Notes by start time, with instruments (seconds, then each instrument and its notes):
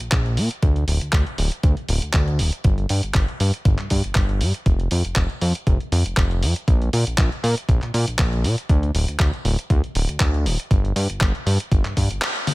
0.01 analog synth bass A#1, closed hi-hat
0.12 analog synth bass A#1, kick, clap, closed hi-hat
0.26 closed hi-hat
0.37 analog synth bass A#2, open hi-hat
0.51 closed hi-hat
0.62 analog synth bass D2, kick, closed hi-hat
0.76 closed hi-hat
0.88 analog synth bass D1, open hi-hat
1.01 analog synth bass D2, closed hi-hat
1.12 analog synth bass D2, kick, clap, closed hi-hat
1.27 closed hi-hat
1.38 analog synth bass D1, open hi-hat
1.52 closed hi-hat
1.63 analog synth bass D2, kick, closed hi-hat
1.77 closed hi-hat
1.89 analog synth bass D1, open hi-hat
2.02 analog synth bass D2, closed hi-hat
2.13 analog synth bass D2, kick, clap, closed hi-hat
2.28 closed hi-hat
2.39 analog synth bass D1, open hi-hat
2.53 closed hi-hat
2.64 analog synth bass G1, kick, closed hi-hat
2.78 closed hi-hat
2.89 analog synth bass G2, open hi-hat
3.03 analog synth bass G1, closed hi-hat
3.14 analog synth bass G1, kick, clap, closed hi-hat
3.28 closed hi-hat
3.40 analog synth bass G2, open hi-hat
3.54 closed hi-hat
3.65 analog synth bass G1, kick, closed hi-hat
3.78 analog synth bass G2, clap, closed hi-hat
3.90 analog synth bass G2, kick, open hi-hat
4.04 analog synth bass G1, closed hi-hat
4.15 analog synth bass G1, kick, clap, closed hi-hat
4.29 closed hi-hat
4.41 analog synth bass G2, open hi-hat
4.54 closed hi-hat
4.66 analog synth bass F1, kick, closed hi-hat
4.80 closed hi-hat
4.91 analog synth bass F2, open hi-hat
5.05 analog synth bass F1, closed hi-hat
5.16 analog synth bass F1, kick, clap, closed hi-hat
5.30 closed hi-hat
5.41 analog synth bass F2, open hi-hat
5.55 closed hi-hat
5.67 analog synth bass F1, kick, closed hi-hat
5.80 closed hi-hat
5.92 analog synth bass F2, open hi-hat
6.06 analog synth bass F1, closed hi-hat
6.17 analog synth bass F1, kick, clap, closed hi-hat
6.31 closed hi-hat
6.43 analog synth bass F2, open hi-hat
6.56 closed hi-hat
6.68 analog synth bass A#1, kick, closed hi-hat
6.82 closed hi-hat
6.93 analog synth bass A#2, open hi-hat
7.07 analog synth bass A#1, closed hi-hat
7.18 analog synth bass A#1, kick, clap, closed hi-hat
7.32 closed hi-hat
7.44 analog synth bass A#2, open hi-hat
7.58 closed hi-hat
7.69 analog synth bass A#1, kick, closed hi-hat
7.82 analog synth bass A#2, clap, closed hi-hat
7.94 analog synth bass A#2, open hi-hat
8.08 analog synth bass A#1, closed hi-hat
8.19 analog synth bass A#1, kick, clap, closed hi-hat
8.33 closed hi-hat
8.44 analog synth bass A#2, open hi-hat
8.58 closed hi-hat
8.69 analog synth bass D2, kick, closed hi-hat
8.83 closed hi-hat
8.95 analog synth bass D1, open hi-hat
9.08 analog synth bass D2, closed hi-hat
9.19 analog synth bass D2, kick, clap, closed hi-hat
9.34 closed hi-hat
9.45 analog synth bass D1, open hi-hat
9.59 closed hi-hat
9.70 analog synth bass D2, kick, closed hi-hat
9.84 closed hi-hat
9.95 analog synth bass D1, open hi-hat
10.09 analog synth bass D2, closed hi-hat
10.20 analog synth bass D2, kick, clap, closed hi-hat
10.34 closed hi-hat
10.45 analog synth bass D1, open hi-hat
10.60 closed hi-hat
10.71 analog synth bass G1, kick, closed hi-hat
10.85 closed hi-hat
10.96 analog synth bass G2, open hi-hat
11.10 analog synth bass G1, closed hi-hat
11.21 analog synth bass G1, kick, clap, closed hi-hat
11.35 closed hi-hat
11.46 analog synth bass G2, open hi-hat
11.60 closed hi-hat
11.72 analog synth bass G1, kick, closed hi-hat
11.85 analog synth bass G2, clap, closed hi-hat
11.97 analog synth bass G2, kick, open hi-hat
12.11 analog synth bass G1, closed hi-hat
12.22 clap, closed hi-hat
12.36 closed hi-hat
12.47 open hi-hat, high tom